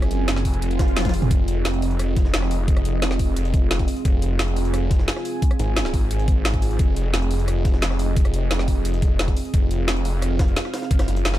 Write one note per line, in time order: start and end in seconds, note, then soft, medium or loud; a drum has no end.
0.00 11.39 C4 medium
0.00 11.39 F4 medium
0.00 11.39 G#4 medium
0.00 1.30 G#5 medium
0.00 cross-stick soft
0.00 closed hi-hat soft
0.11 0.44 F#1 loud
0.11 closed hi-hat medium
0.28 snare loud
0.28 closed hi-hat medium
0.28 closed hi-hat loud
0.36 cross-stick soft
0.36 snare soft
0.45 1.29 F1 loud
0.45 kick medium
0.45 closed hi-hat medium
0.45 open hi-hat medium
0.54 closed hi-hat soft
0.62 closed hi-hat medium
0.62 closed hi-hat loud
0.62 swell medium
0.71 closed hi-hat soft
0.79 kick loud
0.79 snare loud
0.79 closed hi-hat medium
0.88 closed hi-hat soft
0.96 snare medium
0.96 snare loud
0.96 closed hi-hat medium
0.96 closed hi-hat loud
0.96 high tom medium
1.01 snare medium
1.01 closed hi-hat medium
1.05 kick medium
1.05 snare medium
1.05 closed hi-hat medium
1.05 closed hi-hat soft
1.05 high tom medium
1.09 snare medium
1.09 closed hi-hat medium
1.14 closed hi-hat medium
1.14 open hi-hat medium
1.22 closed hi-hat soft
1.22 mid tom medium
1.31 1.47 F1 medium
1.31 4.04 D#5 medium
1.31 kick loud
1.31 closed hi-hat medium
1.31 closed hi-hat loud
1.48 2.32 F1 loud
1.48 closed hi-hat medium
1.65 snare loud
1.65 closed hi-hat medium
1.65 closed hi-hat loud
1.74 closed hi-hat soft
1.82 closed hi-hat medium
1.82 open hi-hat medium
1.91 closed hi-hat soft
1.99 cross-stick medium
1.99 closed hi-hat medium
1.99 closed hi-hat loud
2.17 kick loud
2.17 snare soft
2.17 closed hi-hat medium
2.25 snare soft
2.34 3.69 F1 loud
2.34 snare loud
2.34 closed hi-hat medium
2.42 cross-stick soft
2.42 snare soft
2.51 closed hi-hat medium
2.51 open hi-hat medium
2.68 kick loud
2.68 closed hi-hat medium
2.77 cross-stick soft
2.77 closed hi-hat soft
2.85 closed hi-hat medium
3.02 snare loud
3.02 closed hi-hat medium
3.02 closed hi-hat loud
3.11 cross-stick soft
3.11 snare soft
3.19 kick medium
3.19 closed hi-hat medium
3.19 open hi-hat medium
3.36 closed hi-hat loud
3.45 closed hi-hat soft
3.54 kick loud
3.54 closed hi-hat medium
3.71 3.87 F1 loud
3.71 snare loud
3.71 closed hi-hat medium
3.79 kick medium
3.79 snare soft
3.79 closed hi-hat soft
3.88 closed hi-hat medium
3.88 open hi-hat medium
3.97 closed hi-hat soft
4.05 4.21 F1 medium
4.05 6.78 G#5 medium
4.05 kick loud
4.05 closed hi-hat medium
4.22 5.07 F1 loud
4.22 closed hi-hat medium
4.39 snare loud
4.39 closed hi-hat loud
4.39 closed hi-hat medium
4.48 closed hi-hat soft
4.56 closed hi-hat medium
4.56 open hi-hat medium
4.65 closed hi-hat soft
4.74 cross-stick medium
4.74 closed hi-hat medium
4.74 closed hi-hat loud
4.91 kick loud
4.91 snare soft
4.91 closed hi-hat medium
4.99 snare soft
5.08 snare loud
5.08 closed hi-hat medium
5.16 cross-stick soft
5.16 snare soft
5.25 closed hi-hat medium
5.25 open hi-hat medium
5.42 kick loud
5.42 closed hi-hat medium
5.51 cross-stick soft
5.51 closed hi-hat soft
5.59 5.92 G#1 loud
5.59 closed hi-hat medium
5.77 snare loud
5.77 closed hi-hat loud
5.77 closed hi-hat medium
5.85 cross-stick soft
5.85 snare soft
5.94 6.09 G#1 medium
5.94 kick medium
5.94 closed hi-hat medium
5.94 open hi-hat medium
6.11 6.78 G#1 medium
6.11 closed hi-hat medium
6.19 closed hi-hat soft
6.28 kick loud
6.28 closed hi-hat medium
6.45 snare loud
6.45 closed hi-hat medium
6.54 kick medium
6.54 snare soft
6.54 closed hi-hat soft
6.62 closed hi-hat medium
6.62 open hi-hat medium
6.71 closed hi-hat soft
6.79 6.95 F1 medium
6.79 9.53 D#5 medium
6.79 kick loud
6.79 closed hi-hat medium
6.96 7.81 F1 loud
6.96 closed hi-hat medium
7.14 snare loud
7.14 closed hi-hat medium
7.22 closed hi-hat soft
7.31 closed hi-hat medium
7.31 open hi-hat medium
7.39 closed hi-hat soft
7.48 cross-stick soft
7.48 closed hi-hat medium
7.65 kick loud
7.65 snare soft
7.65 closed hi-hat medium
7.74 snare soft
7.82 9.18 F1 loud
7.82 snare loud
7.82 closed hi-hat medium
7.91 cross-stick soft
7.91 snare soft
7.99 closed hi-hat medium
7.99 open hi-hat medium
8.16 kick loud
8.16 closed hi-hat medium
8.25 cross-stick soft
8.25 closed hi-hat soft
8.34 closed hi-hat medium
8.51 snare loud
8.51 closed hi-hat medium
8.51 closed hi-hat loud
8.59 cross-stick soft
8.59 snare soft
8.68 kick medium
8.68 closed hi-hat medium
8.68 open hi-hat medium
8.85 closed hi-hat loud
8.85 closed hi-hat medium
8.94 closed hi-hat soft
9.02 kick loud
9.02 closed hi-hat medium
9.19 9.35 F1 loud
9.19 snare loud
9.19 closed hi-hat medium
9.28 kick medium
9.28 snare soft
9.28 closed hi-hat soft
9.37 closed hi-hat medium
9.37 open hi-hat medium
9.45 closed hi-hat soft
9.54 9.69 F1 medium
9.54 11.39 F5 medium
9.54 kick loud
9.54 closed hi-hat medium
9.71 10.55 F1 loud
9.71 closed hi-hat medium
9.88 snare loud
9.88 closed hi-hat loud
9.88 closed hi-hat medium
9.97 closed hi-hat soft
10.05 closed hi-hat medium
10.05 open hi-hat medium
10.22 cross-stick soft
10.22 closed hi-hat medium
10.22 closed hi-hat loud
10.39 kick loud
10.39 snare loud
10.39 closed hi-hat medium
10.48 closed hi-hat soft
10.56 snare loud
10.56 closed hi-hat medium
10.65 cross-stick soft
10.65 snare soft
10.74 snare loud
10.74 closed hi-hat medium
10.74 open hi-hat medium
10.82 snare soft
10.91 11.07 F#1 loud
10.91 kick loud
10.91 closed hi-hat medium
10.91 closed hi-hat loud
10.99 cross-stick soft
10.99 snare loud
10.99 closed hi-hat medium
10.99 closed hi-hat soft
11.08 11.39 F#1 loud
11.08 snare soft
11.08 closed hi-hat medium
11.17 closed hi-hat medium
11.25 snare loud
11.25 closed hi-hat medium
11.25 closed hi-hat loud
11.34 cross-stick soft
11.34 snare soft